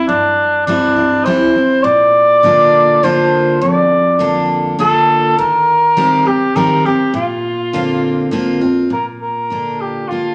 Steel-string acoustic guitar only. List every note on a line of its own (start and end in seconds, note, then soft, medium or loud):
0.09 1.20 G2 medium
0.67 0.95 E3 medium
0.67 0.96 G3 medium
0.67 0.96 C4 loud
0.67 0.95 E4 loud
0.96 1.26 C4 medium
0.96 1.25 E4 medium
1.26 1.54 E3 medium
1.26 1.54 G3 medium
1.26 1.55 C4 medium
1.26 1.54 E4 loud
1.56 1.85 C4 medium
1.56 1.84 E4 medium
1.84 2.96 A#2 medium
2.43 2.99 D3 medium
2.43 3.00 A#3 loud
2.43 3.00 D4 loud
2.43 3.01 F4 loud
3.03 3.59 D3 loud
3.03 3.59 A#3 loud
3.03 3.59 D4 loud
3.03 3.59 F4 loud
3.61 4.73 F2 medium
4.19 4.75 D3 medium
4.19 4.76 A#3 medium
4.19 4.76 D4 loud
4.19 4.77 F4 loud
4.79 5.35 D3 loud
4.79 5.35 A#3 medium
4.79 5.35 D4 medium
4.79 5.36 F4 loud
5.97 6.25 D#3 medium
5.97 6.25 G3 loud
5.97 6.25 C4 loud
5.97 6.24 G4 loud
6.25 6.55 C4 soft
6.25 6.54 G4 medium
6.56 6.84 D#3 loud
6.56 6.84 G3 loud
6.56 6.85 C4 medium
6.56 6.85 G4 medium
6.86 7.15 C4 medium
6.86 7.14 G4 medium
7.14 8.26 A#2 medium
7.73 8.30 D3 loud
7.73 8.30 A#3 medium
7.73 8.30 C4 loud
7.73 8.31 F4 loud
8.31 8.60 D3 medium
8.31 8.61 A#3 medium
8.31 8.61 C4 medium
8.31 8.60 F4 medium
8.61 8.91 C4 medium
8.61 8.90 F4 medium
8.90 10.03 A#2 medium
9.50 10.07 D3 medium
9.50 10.07 A#3 medium
9.50 10.08 D4 medium
9.50 10.08 F4 medium
10.11 10.35 D3 soft
10.11 10.35 A#3 medium
10.11 10.35 D4 medium
10.11 10.35 F4 medium